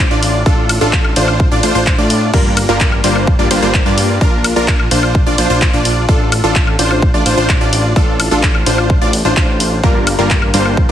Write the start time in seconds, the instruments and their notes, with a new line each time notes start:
0.11 analog synth bass A1, supersaw synth D4 F4 D5
0.23 open hi-hat, ride
0.46 supersaw synth D4 F4 A4, kick
0.69 open hi-hat, ride, high woodblock
0.81 analog synth bass A1, supersaw synth D4 F4 A4
0.93 kick, clap
1.04 high woodblock
1.16 analog synth bass A1, supersaw synth D4 F4 C5, open hi-hat, ride
1.28 high woodblock
1.40 kick
1.52 analog synth bass A1, supersaw synth D4 F4 D5
1.63 analog synth bass A1, supersaw synth D4 F4 C5, open hi-hat, ride
1.75 analog synth bass A1, supersaw synth D4 F4 C5
1.87 kick, clap
1.98 analog synth bass A2, supersaw synth D4 F4 D5
2.10 open hi-hat, ride
2.34 analog synth bass G1, supersaw synth G3 A#3 D4 F4 A#4, kick, crash
2.57 open hi-hat, ride, high woodblock
2.69 analog synth bass G1, supersaw synth G3 A#3 D4 F4 A#4
2.80 kick, clap
2.92 high woodblock
3.04 analog synth bass G1, supersaw synth G3 A#3 D4 F4 C5, open hi-hat, ride
3.16 high woodblock
3.27 kick
3.39 analog synth bass G1, supersaw synth G3 A#3 D4 F4 D5
3.51 analog synth bass G1, supersaw synth G3 A#3 D4 F4 C5, open hi-hat, ride
3.62 analog synth bass G1, supersaw synth G3 A#3 D4 F4 C5
3.74 kick, clap
3.86 analog synth bass G2, supersaw synth G3 A#3 D4 F4 D5
3.98 open hi-hat, ride
4.21 analog synth bass A#1, supersaw synth D4 F4 A#4, kick
4.44 open hi-hat, ride, high woodblock
4.56 analog synth bass A#1, supersaw synth D4 F4 A#4
4.68 kick, clap
4.79 high woodblock
4.91 analog synth bass A#1, supersaw synth D4 F4 C5, open hi-hat, ride
5.03 high woodblock
5.15 kick
5.26 analog synth bass A#1, supersaw synth D4 F4 D5
5.38 analog synth bass A#1, supersaw synth D4 F4 C5, open hi-hat, ride
5.50 analog synth bass A#1, supersaw synth D4 F4 C5
5.62 kick, clap
5.73 analog synth bass A#1, supersaw synth D4 F4 D5
5.85 open hi-hat, ride
6.09 analog synth bass A1, supersaw synth D4 F4 A4, kick
6.32 open hi-hat, ride, high woodblock
6.44 analog synth bass A1, supersaw synth D4 F4 A4
6.56 kick, clap
6.67 high woodblock
6.79 analog synth bass A1, supersaw synth D4 F4 C5, open hi-hat, ride
6.91 high woodblock
7.02 kick
7.14 analog synth bass A1, supersaw synth D4 F4 D5
7.26 analog synth bass A1, supersaw synth D4 F4 C5, open hi-hat, ride
7.37 analog synth bass A1, supersaw synth D4 F4 C5
7.49 kick, clap
7.61 analog synth bass A1, supersaw synth D4 F4 D5
7.73 open hi-hat, ride
7.96 supersaw synth D4 F4 A4, kick
8.20 open hi-hat, ride, high woodblock
8.31 analog synth bass A1, supersaw synth D4 F4 A4
8.43 kick, clap
8.55 high woodblock
8.66 analog synth bass A1, supersaw synth D4 F4 C5, open hi-hat, ride
8.78 high woodblock
8.90 kick
9.01 analog synth bass A1, supersaw synth D4 F4 D5
9.13 open hi-hat, ride
9.25 analog synth bass A1, supersaw synth D4 F4 C5
9.37 supersaw synth F4, kick, clap
9.60 open hi-hat, ride
9.83 supersaw synth G3 A#3 D4 F4 A#4, kick
10.07 open hi-hat, ride, high woodblock
10.19 analog synth bass G1, supersaw synth G3 A#3 D4 F4 A#4
10.30 kick, clap
10.42 high woodblock
10.54 analog synth bass G1, supersaw synth G3 A#3 D4 F4 C5, open hi-hat, ride
10.65 high woodblock
10.77 kick